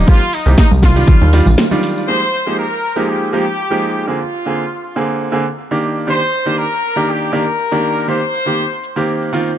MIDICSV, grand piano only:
0, 0, Header, 1, 2, 480
1, 0, Start_track
1, 0, Tempo, 500000
1, 78, Time_signature, 4, 2, 24, 8
1, 9198, End_track
2, 0, Start_track
2, 0, Title_t, "Grand piano"
2, 0, Program_c, 0, 0
2, 65, Note_on_c, 0, 51, 76
2, 68, Note_on_c, 0, 58, 66
2, 70, Note_on_c, 0, 60, 66
2, 71, Note_on_c, 0, 67, 81
2, 176, Note_off_c, 0, 51, 0
2, 178, Note_off_c, 0, 58, 0
2, 179, Note_off_c, 0, 60, 0
2, 179, Note_off_c, 0, 67, 0
2, 439, Note_on_c, 0, 51, 73
2, 441, Note_on_c, 0, 58, 64
2, 444, Note_on_c, 0, 60, 65
2, 449, Note_on_c, 0, 67, 82
2, 593, Note_off_c, 0, 51, 0
2, 594, Note_off_c, 0, 58, 0
2, 596, Note_off_c, 0, 60, 0
2, 598, Note_off_c, 0, 67, 0
2, 919, Note_on_c, 0, 51, 84
2, 922, Note_on_c, 0, 55, 78
2, 925, Note_on_c, 0, 62, 78
2, 926, Note_on_c, 0, 65, 95
2, 1247, Note_off_c, 0, 51, 0
2, 1249, Note_off_c, 0, 55, 0
2, 1250, Note_off_c, 0, 62, 0
2, 1251, Note_off_c, 0, 65, 0
2, 1277, Note_on_c, 0, 51, 86
2, 1279, Note_on_c, 0, 55, 81
2, 1282, Note_on_c, 0, 62, 80
2, 1285, Note_on_c, 0, 65, 96
2, 1382, Note_off_c, 0, 51, 0
2, 1383, Note_off_c, 0, 55, 0
2, 1385, Note_off_c, 0, 62, 0
2, 1386, Note_off_c, 0, 65, 0
2, 1643, Note_on_c, 0, 51, 82
2, 1647, Note_on_c, 0, 55, 73
2, 1650, Note_on_c, 0, 62, 73
2, 1654, Note_on_c, 0, 65, 88
2, 1969, Note_off_c, 0, 51, 0
2, 1971, Note_off_c, 0, 55, 0
2, 1973, Note_off_c, 0, 62, 0
2, 1975, Note_off_c, 0, 65, 0
2, 1994, Note_on_c, 0, 53, 64
2, 1997, Note_on_c, 0, 56, 61
2, 2001, Note_on_c, 0, 58, 59
2, 2003, Note_on_c, 0, 63, 61
2, 2004, Note_on_c, 0, 67, 71
2, 2100, Note_off_c, 0, 53, 0
2, 2102, Note_off_c, 0, 56, 0
2, 2104, Note_off_c, 0, 58, 0
2, 2105, Note_off_c, 0, 63, 0
2, 2106, Note_off_c, 0, 67, 0
2, 2365, Note_on_c, 0, 53, 63
2, 2367, Note_on_c, 0, 56, 59
2, 2370, Note_on_c, 0, 58, 58
2, 2372, Note_on_c, 0, 63, 57
2, 2373, Note_on_c, 0, 67, 70
2, 2516, Note_off_c, 0, 53, 0
2, 2517, Note_off_c, 0, 56, 0
2, 2518, Note_off_c, 0, 58, 0
2, 2520, Note_off_c, 0, 63, 0
2, 2520, Note_off_c, 0, 67, 0
2, 2839, Note_on_c, 0, 53, 74
2, 2842, Note_on_c, 0, 56, 69
2, 2846, Note_on_c, 0, 58, 67
2, 2849, Note_on_c, 0, 63, 67
2, 2850, Note_on_c, 0, 67, 82
2, 3167, Note_off_c, 0, 53, 0
2, 3168, Note_off_c, 0, 56, 0
2, 3171, Note_off_c, 0, 58, 0
2, 3172, Note_off_c, 0, 63, 0
2, 3173, Note_off_c, 0, 67, 0
2, 3192, Note_on_c, 0, 53, 76
2, 3196, Note_on_c, 0, 56, 69
2, 3197, Note_on_c, 0, 58, 70
2, 3199, Note_on_c, 0, 63, 69
2, 3205, Note_on_c, 0, 67, 84
2, 3300, Note_off_c, 0, 53, 0
2, 3302, Note_off_c, 0, 56, 0
2, 3302, Note_off_c, 0, 58, 0
2, 3303, Note_off_c, 0, 63, 0
2, 3306, Note_off_c, 0, 67, 0
2, 3555, Note_on_c, 0, 53, 71
2, 3561, Note_on_c, 0, 56, 64
2, 3562, Note_on_c, 0, 58, 64
2, 3565, Note_on_c, 0, 63, 63
2, 3566, Note_on_c, 0, 67, 77
2, 3885, Note_off_c, 0, 53, 0
2, 3888, Note_off_c, 0, 56, 0
2, 3889, Note_off_c, 0, 58, 0
2, 3890, Note_off_c, 0, 63, 0
2, 3891, Note_off_c, 0, 67, 0
2, 3911, Note_on_c, 0, 50, 66
2, 3914, Note_on_c, 0, 58, 61
2, 3917, Note_on_c, 0, 60, 62
2, 3922, Note_on_c, 0, 68, 74
2, 4019, Note_off_c, 0, 50, 0
2, 4021, Note_off_c, 0, 58, 0
2, 4022, Note_off_c, 0, 60, 0
2, 4025, Note_off_c, 0, 68, 0
2, 4282, Note_on_c, 0, 50, 65
2, 4284, Note_on_c, 0, 58, 60
2, 4288, Note_on_c, 0, 60, 59
2, 4291, Note_on_c, 0, 68, 70
2, 4434, Note_off_c, 0, 50, 0
2, 4435, Note_off_c, 0, 58, 0
2, 4438, Note_off_c, 0, 60, 0
2, 4439, Note_off_c, 0, 68, 0
2, 4762, Note_on_c, 0, 50, 73
2, 4763, Note_on_c, 0, 58, 71
2, 4766, Note_on_c, 0, 60, 69
2, 4769, Note_on_c, 0, 68, 82
2, 5089, Note_off_c, 0, 50, 0
2, 5089, Note_off_c, 0, 58, 0
2, 5091, Note_off_c, 0, 60, 0
2, 5092, Note_off_c, 0, 68, 0
2, 5108, Note_on_c, 0, 50, 77
2, 5113, Note_on_c, 0, 58, 70
2, 5115, Note_on_c, 0, 60, 70
2, 5119, Note_on_c, 0, 68, 85
2, 5218, Note_off_c, 0, 50, 0
2, 5220, Note_off_c, 0, 58, 0
2, 5221, Note_off_c, 0, 60, 0
2, 5223, Note_off_c, 0, 68, 0
2, 5482, Note_on_c, 0, 51, 71
2, 5483, Note_on_c, 0, 58, 67
2, 5486, Note_on_c, 0, 62, 66
2, 5490, Note_on_c, 0, 67, 79
2, 5809, Note_off_c, 0, 51, 0
2, 5809, Note_off_c, 0, 58, 0
2, 5811, Note_off_c, 0, 62, 0
2, 5813, Note_off_c, 0, 67, 0
2, 5827, Note_on_c, 0, 51, 67
2, 5830, Note_on_c, 0, 58, 62
2, 5833, Note_on_c, 0, 62, 61
2, 5837, Note_on_c, 0, 67, 74
2, 5937, Note_off_c, 0, 51, 0
2, 5939, Note_off_c, 0, 58, 0
2, 5940, Note_off_c, 0, 62, 0
2, 5942, Note_off_c, 0, 67, 0
2, 6198, Note_on_c, 0, 51, 67
2, 6203, Note_on_c, 0, 58, 58
2, 6206, Note_on_c, 0, 62, 60
2, 6208, Note_on_c, 0, 67, 70
2, 6353, Note_off_c, 0, 51, 0
2, 6355, Note_off_c, 0, 58, 0
2, 6357, Note_off_c, 0, 62, 0
2, 6358, Note_off_c, 0, 67, 0
2, 6681, Note_on_c, 0, 51, 76
2, 6684, Note_on_c, 0, 58, 67
2, 6688, Note_on_c, 0, 62, 70
2, 6690, Note_on_c, 0, 67, 85
2, 7008, Note_off_c, 0, 51, 0
2, 7010, Note_off_c, 0, 58, 0
2, 7012, Note_off_c, 0, 62, 0
2, 7013, Note_off_c, 0, 67, 0
2, 7032, Note_on_c, 0, 51, 76
2, 7034, Note_on_c, 0, 58, 70
2, 7035, Note_on_c, 0, 62, 69
2, 7041, Note_on_c, 0, 67, 87
2, 7139, Note_off_c, 0, 51, 0
2, 7141, Note_off_c, 0, 58, 0
2, 7141, Note_off_c, 0, 62, 0
2, 7144, Note_off_c, 0, 67, 0
2, 7406, Note_on_c, 0, 51, 71
2, 7410, Note_on_c, 0, 58, 65
2, 7411, Note_on_c, 0, 62, 67
2, 7415, Note_on_c, 0, 67, 80
2, 7731, Note_off_c, 0, 51, 0
2, 7733, Note_off_c, 0, 58, 0
2, 7733, Note_off_c, 0, 62, 0
2, 7735, Note_off_c, 0, 67, 0
2, 7753, Note_on_c, 0, 51, 69
2, 7756, Note_on_c, 0, 58, 62
2, 7760, Note_on_c, 0, 60, 62
2, 7761, Note_on_c, 0, 67, 72
2, 7860, Note_off_c, 0, 51, 0
2, 7862, Note_off_c, 0, 58, 0
2, 7863, Note_off_c, 0, 60, 0
2, 7864, Note_off_c, 0, 67, 0
2, 8121, Note_on_c, 0, 51, 63
2, 8126, Note_on_c, 0, 58, 57
2, 8129, Note_on_c, 0, 60, 60
2, 8133, Note_on_c, 0, 67, 71
2, 8274, Note_off_c, 0, 51, 0
2, 8276, Note_off_c, 0, 58, 0
2, 8278, Note_off_c, 0, 60, 0
2, 8280, Note_off_c, 0, 67, 0
2, 8603, Note_on_c, 0, 51, 75
2, 8605, Note_on_c, 0, 58, 69
2, 8609, Note_on_c, 0, 60, 69
2, 8612, Note_on_c, 0, 67, 82
2, 8929, Note_off_c, 0, 51, 0
2, 8930, Note_off_c, 0, 58, 0
2, 8932, Note_off_c, 0, 60, 0
2, 8934, Note_off_c, 0, 67, 0
2, 8953, Note_on_c, 0, 51, 78
2, 8953, Note_on_c, 0, 58, 69
2, 8958, Note_on_c, 0, 60, 72
2, 8961, Note_on_c, 0, 65, 87
2, 9118, Note_off_c, 0, 51, 0
2, 9118, Note_off_c, 0, 58, 0
2, 9120, Note_off_c, 0, 60, 0
2, 9122, Note_off_c, 0, 65, 0
2, 9198, End_track
0, 0, End_of_file